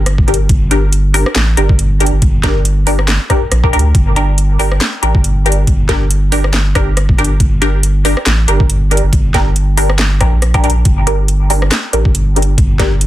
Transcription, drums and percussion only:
0.06 cross-stick, closed hi-hat
0.18 kick
0.28 closed hi-hat
0.34 closed hi-hat
0.49 kick, closed hi-hat
0.71 closed hi-hat
0.93 closed hi-hat
1.14 open hi-hat
1.26 cross-stick
1.36 snare, clap
1.57 closed hi-hat
1.69 kick
1.79 closed hi-hat
2.00 closed hi-hat
2.06 closed hi-hat
2.22 kick, closed hi-hat
2.44 kick, snare, closed hi-hat
2.65 closed hi-hat
2.87 open hi-hat
2.99 cross-stick
3.08 snare, clap
3.30 kick, cross-stick, closed hi-hat
3.52 cross-stick, closed hi-hat
3.64 kick
3.73 closed hi-hat
3.79 closed hi-hat
3.95 kick, closed hi-hat
4.16 closed hi-hat
4.38 closed hi-hat
4.59 open hi-hat
4.72 cross-stick
4.81 snare, clap
5.03 closed hi-hat
5.15 kick
5.24 closed hi-hat
5.46 closed hi-hat
5.52 closed hi-hat
5.67 kick, closed hi-hat
5.89 kick, snare, closed hi-hat
6.11 closed hi-hat
6.32 open hi-hat
6.44 cross-stick
6.54 snare, clap
6.75 kick, cross-stick, closed hi-hat
6.97 cross-stick, closed hi-hat
7.09 kick
7.18 closed hi-hat
7.25 closed hi-hat
7.40 kick, closed hi-hat
7.62 closed hi-hat
7.83 closed hi-hat
8.05 open hi-hat
8.17 cross-stick
8.26 snare, clap
8.48 closed hi-hat
8.60 kick
8.70 closed hi-hat
8.91 closed hi-hat
8.97 closed hi-hat
9.13 kick, closed hi-hat
9.34 kick, snare, closed hi-hat
9.56 closed hi-hat
9.77 open hi-hat
9.90 cross-stick
9.99 snare, clap
10.21 kick, cross-stick, closed hi-hat
10.42 cross-stick, closed hi-hat
10.54 kick, cross-stick, closed hi-hat
10.64 closed hi-hat
10.70 closed hi-hat
10.85 kick, closed hi-hat
11.07 closed hi-hat
11.28 closed hi-hat
11.50 open hi-hat
11.62 cross-stick
11.72 snare, clap
11.93 closed hi-hat
12.05 kick
12.15 closed hi-hat
12.36 closed hi-hat
12.42 closed hi-hat
12.58 kick, closed hi-hat
12.79 kick, snare, closed hi-hat
13.01 closed hi-hat

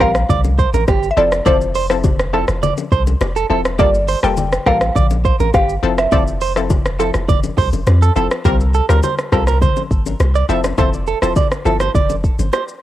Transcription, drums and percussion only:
0.00 kick, cross-stick
0.15 cross-stick, shaker
0.30 kick, low conga, shaker
0.44 low bongo, shaker
0.59 kick, shaker
0.74 low bongo, shaker
0.88 kick, cross-stick, high bongo, shaker
1.03 shaker
1.32 cross-stick, shaker
1.46 kick, low conga, shaker
1.61 shaker
1.75 open hi-hat, shaker
1.90 cross-stick, shaker
2.04 kick, high bongo, low conga, shaker
2.20 cross-stick, shaker
2.48 cross-stick, shaker
2.63 low conga, shaker
2.77 low bongo, shaker
2.92 kick, shaker
3.07 low bongo, shaker
3.21 cross-stick, high bongo, shaker
3.36 shaker
3.65 cross-stick, shaker
3.79 kick, low conga, shaker
3.94 shaker
4.08 open hi-hat, shaker
4.23 cross-stick, shaker
4.37 high bongo, low conga, shaker
4.53 cross-stick, shaker
4.66 kick, cross-stick
4.81 cross-stick, shaker
4.96 kick, low conga, shaker
5.10 low bongo, shaker
5.25 kick, shaker
5.40 low bongo, shaker
5.54 kick, cross-stick, high bongo, shaker
5.69 shaker
5.98 cross-stick, shaker
6.12 kick, low conga, shaker
6.27 shaker
6.41 open hi-hat, shaker
6.56 cross-stick, shaker
6.70 kick, high bongo, low conga, shaker
6.86 cross-stick, shaker
7.00 shaker
7.14 cross-stick, high bongo, shaker
7.29 kick, low conga, shaker
7.43 low bongo, shaker
7.58 kick, open hi-hat, high bongo, shaker
7.73 low bongo, shaker
7.87 cross-stick, high bongo, shaker
8.02 shaker
8.16 shaker
8.31 cross-stick, shaker
8.45 kick, low conga, shaker
8.60 shaker
8.74 shaker
8.89 cross-stick, shaker
9.03 high bongo, low conga, shaker
9.19 cross-stick, shaker
9.32 kick, cross-stick, shaker
9.47 cross-stick, high bongo, shaker
9.62 kick, low conga, shaker
9.76 low bongo, shaker
9.91 kick, shaker
10.06 low bongo, shaker
10.20 cross-stick, high bongo, shaker
10.35 shaker
10.49 shaker
10.64 cross-stick, low bongo, shaker
10.78 kick, low conga, shaker
10.93 shaker
11.07 shaker
11.22 cross-stick, shaker
11.36 kick, high bongo, low conga, shaker
11.52 cross-stick, shaker
11.66 shaker
11.80 cross-stick, high bongo, shaker
11.95 kick, low conga, shaker
12.10 low bongo, shaker
12.24 kick, shaker
12.39 low bongo, shaker
12.53 cross-stick, high bongo, shaker
12.68 shaker

